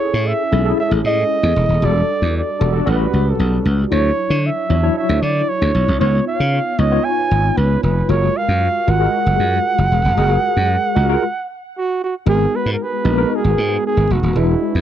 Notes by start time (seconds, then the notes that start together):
Already playing: C#4 E4 G#4 A4 C#5
0.14 A2
0.27 E5
0.51 B1 G#3 C#4 E4 A4
0.65 C#4 E4 G#4 A4
0.80 E5
0.91 A1
1.04 A2 D#5
1.43 E2
1.56 E1
1.69 D#1
1.82 E1 G3 D4 F#4 G#4 D5
1.89 A4
2.22 E2
2.37 D5
2.60 E1 G3 D4 F#4 A4
2.72 G3 D4 F#4 A4
2.85 A1 G3 C#4 F#4 A4
2.90 B4
3.13 C#2
3.30 A4
3.39 B1
3.65 C#2
3.91 D2 F#3 D4 E4 C#5
4.30 D3
4.46 E5
4.69 E2 F#3 D4 E4 C#5
4.82 F#3 D4 E4 C#5
4.98 E5
5.09 D2
5.22 D3 D5
5.49 C#5
5.62 D2
5.75 B1
5.88 C2
6.00 C#2 B3 D#4 F4 C#5
6.27 F5
6.40 C#3
6.78 C#2 B3 D#4 F4 C#5 D#5
6.91 B3 D#4 F4 C#5
7.05 G#5
7.31 G#1
7.57 C#2 B4
7.83 F1 B4
8.09 F#1 G#3 F4 F#4 A#4 C#5
8.37 F5
8.48 F#2
8.87 G#1 G#3 F4 F#4 A#4 F#5
8.99 G#3 F#4 G#4 A#4
9.26 F#1
9.39 F#2
9.78 F#1
9.92 E1
10.05 F1
10.17 F#1 G#3 F#4 G#4 A#4
10.57 F#2
10.95 C#2 G#3 F4 F#4 A#4
11.09 G#3 F4 F#4 A#4
11.77 F#4
12.03 F#4
12.26 G#1 G#3 B3 D#4 F#4 G#4 A#4
12.56 B4
12.66 G#2
12.73 A#4
12.83 B4
13.04 A#1 G#3 B3 D#4 F#4 A#4
13.17 G#3 B3 D#4 F#4 A#4
13.35 G#4
13.44 G#1
13.58 G#2
13.86 G#4
13.97 G#1
14.10 F1 F#4
14.23 D#1
14.36 E1 G#3 D4 E4 F#4 B4
14.75 E2